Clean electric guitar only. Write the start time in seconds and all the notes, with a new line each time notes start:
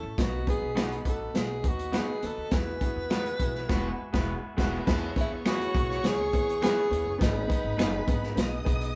0.75 B3 D#4 F#4 B4
1.92 B3 D#4 F#4 B4
3.10 G#3 B3 F#4 B4
3.69 G#3 B3 F#4 B4
4.13 G#3 B3 F#4 B4
4.57 G#3 B3 F#4 B4
5.45 B3 E4 G#4 B4
6.62 B3 E4 G#4 B4
7.77 B3 D#4 G#4 B4